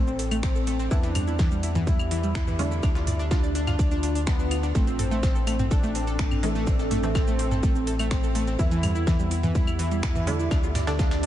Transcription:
Already playing: A1 C4 A4, downlifter
0.07 C4, shaker
0.19 A4, open hi-hat, ride, shaker
0.31 A3, open hi-hat, claves, shaker
0.43 C4, finger snap, kick, snare, ride, shaker
0.55 A4, shaker
0.67 A3, open hi-hat, ride, shaker
0.79 C4, snare, shaker
0.91 E2 E3 B3 D4 E4, kick, ride, shaker
1.03 E3, ride, shaker
1.15 G3, mid tom, open hi-hat, ride, claves, shaker
1.27 E4, shaker
1.33 G4
1.39 E3, kick, snare, ride, shaker
1.51 G3, shaker
1.63 E4, open hi-hat, ride, shaker
1.75 E3, mid tom, ride, shaker
1.87 G3 E4, kick, ride, shaker
1.99 E4, claves, shaker
2.11 E3, open hi-hat, ride, shaker
2.23 G3, ride, shaker
2.35 E4, finger snap, kick, snare, ride, shaker
2.47 E3, mid tom, shaker
2.59 D3 G3 A3 D4, open hi-hat, ride, shaker
2.71 E4, shaker
2.83 D2 D4, kick, ride, claves, shaker
2.95 F4, snare, shaker
3.07 D5, mid tom, open hi-hat, ride, shaker
3.19 D4, shaker
3.31 D4 F4, kick, snare, ride, shaker
3.43 D5, shaker
3.53 D4 F4, open hi-hat, ride, shaker
3.67 F4, snare, mid tom, claves, shaker
3.79 D5, kick, ride, shaker
3.91 D4, shaker
4.03 D4, open hi-hat, ride, shaker
4.15 D4, open hi-hat, shaker
4.27 B3 D4, finger snap, kick, snare, ride, shaker
4.39 D4, shaker
4.51 F4, open hi-hat, ride, claves, shaker
4.63 D4, snare, shaker
4.75 A1 A3 C4, kick, ride, shaker
4.87 C4, ride, shaker
4.99 A4, mid tom, open hi-hat, ride, shaker
5.11 A3, shaker
5.23 C4, kick, snare, ride, shaker
5.35 A4, shaker
5.47 A3 A4, open hi-hat, ride, claves, shaker
5.59 C4, mid tom, ride, shaker
5.71 D4 A4, kick, ride, shaker
5.83 A3, shaker
5.95 C4, open hi-hat, ride, shaker
6.07 A4, ride, shaker
6.19 A3, finger snap, kick, snare, ride, shaker
6.31 C4, mid tom, claves, shaker
6.43 A2 E3 A3 A4, open hi-hat, ride, shaker
6.55 A3, shaker
6.67 C4, kick, ride, shaker
6.79 A4, snare, shaker
6.91 A3, mid tom, open hi-hat, ride, shaker
7.03 A2 E3 A3 C4, shaker
7.15 C4 A4, kick, snare, ride, claves, shaker
7.27 A3, shaker
7.39 C4, open hi-hat, ride, shaker
7.51 A4, snare, mid tom, shaker
7.63 A3, kick, ride, shaker
7.75 C4, shaker
7.87 A4, open hi-hat, ride, shaker
7.99 A3, open hi-hat, claves, shaker
8.11 C4, finger snap, kick, snare, ride, shaker
8.23 A4, shaker
8.35 A3, open hi-hat, ride, shaker
8.47 C4, snare, shaker
8.59 E2 E3 B3 E4, kick, ride, shaker
8.71 E3, ride, shaker
8.83 G3, mid tom, open hi-hat, ride, claves, shaker
8.95 E4, shaker
9.07 E3 G4, kick, snare, ride, shaker
9.19 G3, shaker
9.31 E4, open hi-hat, ride, shaker
9.43 E3, mid tom, ride, shaker
9.55 G3 E4, kick, ride, shaker
9.67 E4, claves, shaker
9.79 E3, open hi-hat, ride, shaker
9.91 G3, ride, shaker
10.03 E4, finger snap, kick, snare, ride, shaker
10.15 E3, mid tom, shaker
10.27 D3 G3 A3 D4, open hi-hat, ride, shaker
10.39 E4, shaker
10.51 D2 D4, kick, snare, ride, claves, shaker
10.63 F4, shaker
10.75 D5, snare, mid tom, open hi-hat, ride, shaker
10.87 D3 A3 D4, snare, ride, shaker
10.99 D4 F4, kick, snare, ride, shaker
11.11 D5, snare, ride, shaker

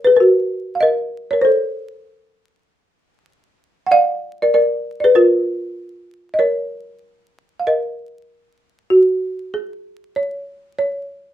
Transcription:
0.04 G#4 B4
0.16 F#4 A#4
0.75 F5
0.80 A#4 D#5
1.31 A#4 C#5
1.42 A4 C5
3.86 F#5
3.91 D5 F5
4.42 A#4 D5
4.54 A#4 D5
5.00 B4 D5
5.04 G#4
5.15 F4 A#4
6.34 D#5
6.39 A#4 C#5
7.60 F5
7.67 A#4 D#5
8.90 F#4
9.54 G#4
10.16 C#5
10.79 C#5

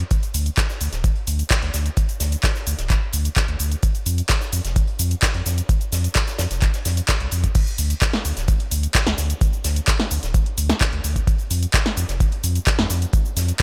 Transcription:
0.11 kick, closed hi-hat, shaker
0.23 closed hi-hat, shaker
0.34 D2, closed hi-hat, open hi-hat, shaker
0.46 closed hi-hat, shaker
0.57 kick, snare, clap, closed hi-hat, shaker
0.70 snare, shaker
0.81 D2, closed hi-hat, open hi-hat, shaker
0.92 D1, snare, closed hi-hat, shaker
1.04 kick, closed hi-hat, shaker
1.16 closed hi-hat
1.27 D2, closed hi-hat, open hi-hat, shaker
1.39 closed hi-hat, shaker
1.50 kick, snare, clap, closed hi-hat, shaker
1.62 D2, snare, closed hi-hat
1.74 D2, snare, closed hi-hat, open hi-hat, shaker
1.86 closed hi-hat, shaker
1.97 kick, closed hi-hat, shaker
2.09 closed hi-hat, shaker
2.20 D2, snare, closed hi-hat, open hi-hat, shaker
2.32 closed hi-hat, shaker
2.43 kick, snare, clap, closed hi-hat, shaker
2.55 snare, shaker
2.67 D2, closed hi-hat, open hi-hat, shaker
2.78 D1, snare, closed hi-hat, shaker
2.90 kick, clap, closed hi-hat, shaker
3.13 D2, closed hi-hat, open hi-hat, shaker
3.24 closed hi-hat, shaker
3.36 kick, snare, clap, closed hi-hat, shaker
3.48 D2, closed hi-hat
3.59 D2, closed hi-hat, open hi-hat, shaker
3.72 closed hi-hat, shaker
3.83 kick, closed hi-hat, shaker
3.95 closed hi-hat, shaker
4.06 F2, closed hi-hat, open hi-hat, shaker
4.18 closed hi-hat, shaker
4.29 kick, snare, clap, closed hi-hat, shaker
4.41 snare, shaker
4.52 F2, closed hi-hat, open hi-hat, shaker
4.65 F1, snare, closed hi-hat, shaker
4.76 kick, closed hi-hat, shaker
4.87 closed hi-hat
4.99 F2, closed hi-hat, open hi-hat, shaker
5.11 closed hi-hat, shaker
5.22 kick, snare, clap, closed hi-hat, shaker
5.34 F2, snare, closed hi-hat
5.46 F2, snare, closed hi-hat, open hi-hat, shaker
5.58 closed hi-hat, shaker
5.69 kick, closed hi-hat, shaker
5.81 closed hi-hat, shaker
5.92 F2, snare, closed hi-hat, open hi-hat, shaker
6.04 closed hi-hat, shaker
6.15 kick, snare, clap, closed hi-hat, shaker
6.27 snare, closed hi-hat, shaker
6.38 F2, snare, closed hi-hat, open hi-hat, shaker
6.51 F1, snare, closed hi-hat, shaker
6.62 kick, clap, closed hi-hat, shaker
6.74 snare, closed hi-hat, shaker
6.85 F2, snare, open hi-hat, shaker
6.97 closed hi-hat, shaker
7.08 kick, snare, clap, closed hi-hat, shaker
7.20 C2, closed hi-hat
7.31 F2, closed hi-hat, open hi-hat, shaker
7.44 kick, closed hi-hat, shaker
7.55 kick, closed hi-hat, crash, shaker
7.67 closed hi-hat, shaker
7.78 D2, closed hi-hat, open hi-hat, shaker
7.90 closed hi-hat, shaker
8.02 kick, snare, clap, closed hi-hat, shaker
8.13 snare, closed hi-hat
8.25 D2, closed hi-hat, open hi-hat, shaker
8.37 D1, snare, closed hi-hat, shaker
8.48 kick, closed hi-hat, shaker
8.60 closed hi-hat
8.71 D2, closed hi-hat, open hi-hat, shaker
8.83 closed hi-hat, shaker
8.95 kick, snare, clap, closed hi-hat, shaker
9.07 D2, snare, closed hi-hat
9.18 D2, snare, closed hi-hat, open hi-hat, shaker
9.30 closed hi-hat, shaker
9.41 kick, closed hi-hat, shaker
9.53 shaker
9.64 D2, snare, closed hi-hat, open hi-hat, shaker
9.76 closed hi-hat, shaker
9.87 kick, snare, clap, closed hi-hat, shaker
9.99 snare, closed hi-hat
10.11 D2, closed hi-hat, open hi-hat, shaker
10.23 D1, snare, closed hi-hat, shaker
10.34 kick, closed hi-hat, shaker
10.46 closed hi-hat
10.58 D2, closed hi-hat, open hi-hat, shaker
10.70 snare, closed hi-hat, shaker
10.81 kick, snare, clap, closed hi-hat, shaker
10.93 D2, closed hi-hat
11.04 D2, closed hi-hat, open hi-hat, shaker
11.16 kick, closed hi-hat, shaker
11.27 kick, closed hi-hat, shaker
11.38 closed hi-hat, shaker
11.51 F2, closed hi-hat, open hi-hat, shaker
11.62 closed hi-hat, shaker
11.74 kick, snare, clap, closed hi-hat, shaker
11.86 snare, closed hi-hat
11.97 F2, closed hi-hat, open hi-hat, shaker
12.09 F1, snare, closed hi-hat, shaker
12.20 kick, closed hi-hat, shaker
12.32 closed hi-hat
12.44 F2, closed hi-hat, open hi-hat, shaker
12.55 closed hi-hat, shaker
12.66 kick, snare, clap, closed hi-hat, shaker
12.79 F2, snare, closed hi-hat
12.90 F2, snare, closed hi-hat, open hi-hat, shaker
13.02 closed hi-hat, shaker
13.13 kick, closed hi-hat, shaker
13.25 shaker
13.36 F2, snare, closed hi-hat, open hi-hat, shaker
13.48 closed hi-hat, shaker

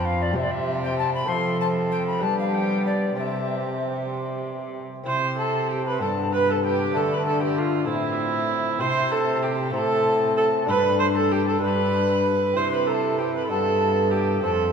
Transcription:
Already playing: F2 C4 F4 C5
0.05 F5
0.22 D5
0.31 C3 C4 G4 C5
0.36 G4 E5
0.43 D5
0.51 E5
0.83 G5
0.98 A5
1.14 B5
1.25 F3 A3 F4 C5 C6
1.29 C4 A4
1.60 A5
1.91 G5
2.07 B5
2.18 G3 B3 D4 G4 B4
2.22 A5
2.39 F5
2.54 G5
2.86 D5
3.15 C3 C4 G4 C5 E5
5.03 C3 C4 E4 C5 C6
5.37 A4 A5
5.69 G4 G5
5.86 B4 B5
5.98 G2 B3 D4 A4 A5
6.33 B4 B5
6.49 A4 A5
6.63 G4 G5
6.91 D3 A3 D4 A5
6.97 A4
7.10 B4 B5
7.25 A4 A5
7.40 G5
7.44 G4
7.57 F4 F5
7.84 A2 A3 C4 E4 E5
7.88 A2
8.79 C3 C4 E4 C5 C6
9.11 A4 A5
9.42 G4 G5
9.70 A2 A3 C4 E4 A4
9.74 A#5
9.78 A5
10.37 A4 A5
10.65 G2 D4 G4 B4 B5
10.99 C5 C6
11.15 A4 A5
11.30 G4 G5
11.46 A4 A5
11.58 G2 D4 G4 B4
11.63 B5
12.53 C3 C4 E4 C5 C6
12.73 B4 B5
12.87 A4 A#5
12.93 A5
13.18 G4 G5
13.34 B4 B5
13.47 G2 B3 D4 A4 A5
14.11 G4 G5
14.41 F2 A3 C4 F4 A4 A5

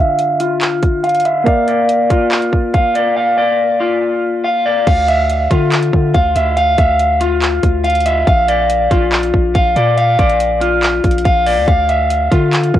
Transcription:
Already playing: D3 D4 F4 E5 F5
0.19 closed hi-hat
0.40 F4, closed hi-hat
0.61 clap, closed hi-hat
0.83 kick, closed hi-hat
1.04 F5, closed hi-hat
1.09 closed hi-hat
1.14 closed hi-hat
1.20 closed hi-hat
1.25 E5, closed hi-hat
1.44 A#3 A#4 D5 F5, kick, closed hi-hat
1.48 F5
1.68 D5, closed hi-hat
1.89 closed hi-hat
2.10 F4, kick, closed hi-hat
2.32 clap, closed hi-hat
2.42 closed hi-hat
2.53 kick
2.74 F5, kick, closed hi-hat
2.95 D5, closed hi-hat
3.17 F5
3.38 D5
3.80 F4
4.44 F5
4.65 D5
4.87 D2 F5, kick, closed hi-hat, crash
5.08 E5, closed hi-hat
5.29 closed hi-hat
5.51 D3 F4, kick, closed hi-hat
5.72 clap, closed hi-hat
5.83 closed hi-hat
5.93 D3, kick
6.14 D2 F5, kick, closed hi-hat
6.36 D2 E5, closed hi-hat
6.57 F5, closed hi-hat
6.78 D2 E5, kick, closed hi-hat
7.00 closed hi-hat
7.21 F4, closed hi-hat
7.42 clap, closed hi-hat
7.63 D2, kick, closed hi-hat
7.84 F5, closed hi-hat
7.90 closed hi-hat
7.95 closed hi-hat
8.01 closed hi-hat
8.06 E5, closed hi-hat
8.27 A#1 F5, kick, closed hi-hat
8.48 D5, closed hi-hat
8.70 closed hi-hat
8.91 A#1 F4, kick, closed hi-hat
9.12 clap, closed hi-hat
9.23 closed hi-hat
9.34 A#1, kick
9.55 A#1 F5, kick, closed hi-hat
9.76 A#2 D5, closed hi-hat
9.97 F5, closed hi-hat
10.19 A#1 D5, kick, closed hi-hat
10.29 closed hi-hat
10.40 closed hi-hat
10.61 F4, closed hi-hat
10.83 clap, closed hi-hat
11.04 A#1, kick, closed hi-hat
11.11 closed hi-hat
11.18 closed hi-hat
11.25 A#1 F5, kick, closed hi-hat
11.46 D5, open hi-hat
11.57 D2
11.68 D2 F5, kick, closed hi-hat
11.89 E5, closed hi-hat
12.10 closed hi-hat
12.31 D3 F4, kick, closed hi-hat
12.53 clap, closed hi-hat
12.63 closed hi-hat
12.74 D3, kick

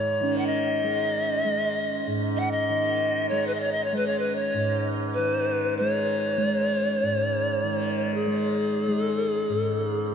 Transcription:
Already playing: G#2 D#3 G#3 C#5
0.20 D#3 C#4
0.38 F#5
0.46 D#5
0.83 G#3
1.44 G#3
2.07 G#2
2.37 D#5 F#5
2.51 D#5
2.69 D#3
3.29 G#3 C#5
3.47 B4
3.54 D#5
3.60 C#5
3.72 D#5
3.84 C#5
3.92 G#3
3.96 B4
4.07 C#5
4.19 B4
4.36 C#5
4.54 G#2
5.14 B4
5.18 D#3
5.77 G#3 C#5
6.38 G#3
7.03 G#2
7.64 D#3
8.14 G#4
8.27 G#3
8.87 G#3
9.06 A4
9.32 G#4
9.49 G#2
9.59 A4
9.84 G#4

